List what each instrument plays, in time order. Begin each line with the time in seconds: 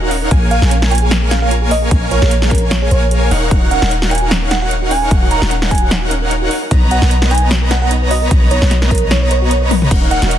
Already playing: 808-style bass D#1, supersaw synth D#4 A#4 C#5 F5 F#5, digital synth lead F#5
0.02 synth arpeggio sound F#4
0.11 synth arpeggio sound C#4, open hi-hat
0.22 synth arpeggio sound A#4
0.31 808-style bass A#1, supersaw synth A#3 A#4 C#5 F5 G#5, synth arpeggio sound F4, digital synth lead G#5, kick, closed hi-hat
0.42 synth arpeggio sound G#4
0.51 fm electric piano F5, closed hi-hat
0.62 808-style bass A#1, supersaw synth A#3 A#4 C#5 F5 G#5, synth arpeggio sound G#4, digital synth lead G#5, snare
0.71 synth arpeggio sound C#4, closed hi-hat
0.82 synth arpeggio sound A#4, snare
0.91 synth arpeggio sound F4, fm electric piano G#5, closed hi-hat
0.95 closed hi-hat
0.98 closed hi-hat
1.02 synth arpeggio sound G#4
1.11 snare, closed hi-hat
1.22 synth arpeggio sound G#4
1.31 synth arpeggio sound C#4, fm electric piano F5, snare, closed hi-hat
1.42 synth arpeggio sound A#4, fm electric piano F5
1.51 synth arpeggio sound F4, closed hi-hat
1.62 synth arpeggio sound G#4
1.71 fm electric piano D#5, open hi-hat
1.82 synth arpeggio sound G#4
1.91 808-style bass A#1, supersaw synth A#3 A#4 C#5 F5 G#5, synth arpeggio sound C#4, digital synth lead G#5, kick, closed hi-hat
2.02 synth arpeggio sound A#4
2.11 synth arpeggio sound F4, fm electric piano C#5, closed hi-hat
2.22 808-style bass A#1, supersaw synth A#3 A#4 C#5 F5 G#5, synth arpeggio sound G#4, digital synth lead G#5, snare
2.31 closed hi-hat
2.42 synth arpeggio sound G#4, snare
2.51 synth arpeggio sound C#4, fm electric piano A#4, kick, closed hi-hat
2.55 closed hi-hat
2.58 closed hi-hat
2.62 synth arpeggio sound A#4
2.71 synth arpeggio sound F4, fm electric piano C#5, snare, closed hi-hat
2.82 synth arpeggio sound G#4, fm electric piano C#5
2.91 808-style bass A#1, supersaw synth A#3 A#4 C#5 F5 G#5, synth arpeggio sound A#4, fm electric piano C#5, digital synth lead G#5, closed hi-hat
3.02 synth arpeggio sound A#4
3.11 synth arpeggio sound G#4, closed hi-hat
3.22 synth arpeggio sound G#4
3.31 808-style bass D#1, supersaw synth D#4 A#4 C#5 F5 F#5, synth arpeggio sound A#4, digital synth lead F#5, open hi-hat
3.42 synth arpeggio sound D#5
3.51 808-style bass D#1, supersaw synth D#4 A#4 C#5 F5 F#5, digital synth lead F#5, kick, closed hi-hat
3.62 synth arpeggio sound F#4
3.71 synth arpeggio sound C#4, fm electric piano F#5, closed hi-hat
3.82 808-style bass D#1, supersaw synth D#4 A#4 C#5 F5 F#5, synth arpeggio sound A#4, snare
3.91 synth arpeggio sound D#4, closed hi-hat
4.02 synth arpeggio sound F#4, snare
4.11 fm electric piano G#5, closed hi-hat
4.15 closed hi-hat
4.18 closed hi-hat
4.22 synth arpeggio sound F#4
4.31 synth arpeggio sound C#4, snare, closed hi-hat
4.42 synth arpeggio sound A#4
4.51 synth arpeggio sound D#4, fm electric piano F#5, snare, closed hi-hat
4.62 synth arpeggio sound F#4, fm electric piano F#5
4.71 closed hi-hat
4.82 synth arpeggio sound F#4
4.91 synth arpeggio sound C#4, fm electric piano G#5, open hi-hat
5.02 synth arpeggio sound A#4
5.11 808-style bass D#1, synth arpeggio sound D#4, supersaw synth D#4 A#4 C#5 F5 F#5, digital synth lead F#5, kick, closed hi-hat
5.22 synth arpeggio sound F#4
5.31 fm electric piano A#5, closed hi-hat
5.42 808-style bass D#1, supersaw synth D#4 A#4 C#5 F5 F#5, synth arpeggio sound F#4, snare
5.51 synth arpeggio sound C#4, closed hi-hat
5.62 synth arpeggio sound A#4, snare
5.71 synth arpeggio sound D#4, fm electric piano G#5, kick, closed hi-hat
5.75 closed hi-hat
5.78 closed hi-hat
5.82 synth arpeggio sound F#4
5.91 snare, closed hi-hat
6.02 synth arpeggio sound F#4
6.11 synth arpeggio sound C#4, closed hi-hat
6.22 synth arpeggio sound A#4
6.31 synth arpeggio sound D#4, closed hi-hat
6.42 synth arpeggio sound F#4
6.51 open hi-hat
6.62 synth arpeggio sound A#4
6.71 808-style bass B1, supersaw synth B3 B4 C#5 D#5 A#5, synth arpeggio sound D#4, digital synth lead A#5, kick, closed hi-hat
6.82 synth arpeggio sound B4
6.91 synth arpeggio sound F#4, fm electric piano F#5, closed hi-hat
7.02 808-style bass B1, supersaw synth B3 B4 C#5 D#5 A#5, synth arpeggio sound A#4, digital synth lead A#5, snare
7.11 closed hi-hat
7.22 synth arpeggio sound A#4, snare
7.31 synth arpeggio sound D#4, fm electric piano G#5, closed hi-hat
7.35 closed hi-hat
7.38 closed hi-hat
7.42 synth arpeggio sound B4
7.51 synth arpeggio sound F#4, snare, closed hi-hat
7.62 synth arpeggio sound A#4
7.71 fm electric piano F#5, snare, closed hi-hat
7.82 synth arpeggio sound A#4, fm electric piano F#5
7.91 synth arpeggio sound D#4, closed hi-hat
8.02 synth arpeggio sound B4
8.11 synth arpeggio sound F#4, fm electric piano D#5, open hi-hat
8.22 synth arpeggio sound A#4
8.31 808-style bass B1, supersaw synth B3 B4 C#5 D#5 A#5, digital synth lead A#5, kick, closed hi-hat
8.42 synth arpeggio sound A#4
8.51 synth arpeggio sound D#4, fm electric piano C#5, closed hi-hat
8.62 808-style bass B1, supersaw synth B3 B4 C#5 D#5 A#5, synth arpeggio sound B4, digital synth lead A#5, snare
8.71 synth arpeggio sound F#4, snare, closed hi-hat
8.82 synth arpeggio sound A#4, snare
8.91 fm electric piano A#4, kick, closed hi-hat
8.95 closed hi-hat
8.98 closed hi-hat
9.02 synth arpeggio sound A#4
9.11 synth arpeggio sound D#4, fm electric piano C#5, snare, closed hi-hat
9.22 synth arpeggio sound B4, fm electric piano C#5
9.31 synth arpeggio sound A#4, fm electric piano C#5, closed hi-hat
9.42 synth arpeggio sound F#4
9.51 synth arpeggio sound A#4, closed hi-hat
9.62 synth arpeggio sound B4
9.71 synth arpeggio sound A#4, open hi-hat, high tom
9.82 mid tom
9.91 808-style bass D#1, string section D#3 A#3 C#4 F#4, synth arpeggio sound C#4, supersaw synth D#4 A#4 C#5 F5 F#5, digital synth lead F#5, kick, closed hi-hat, crash
10.02 synth arpeggio sound A#4
10.11 synth arpeggio sound D#4, fm electric piano F#5, closed hi-hat
10.22 808-style bass D#1, supersaw synth D#4 A#4 C#5 F5 F#5, synth arpeggio sound F#4, digital synth lead F#5, snare, closed hi-hat
10.31 closed hi-hat